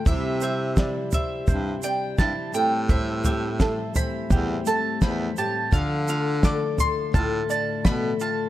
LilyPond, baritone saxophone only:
\new Staff \with { instrumentName = "Baritone saxophone" } { \clef bass \time 4/4 \key a \minor \tempo 4 = 85 c2 g,8 r8 g,16 r16 a,8~ | a,2 e,8 r8 e,8 r8 | d2 a,8 r8 b,8 r8 | }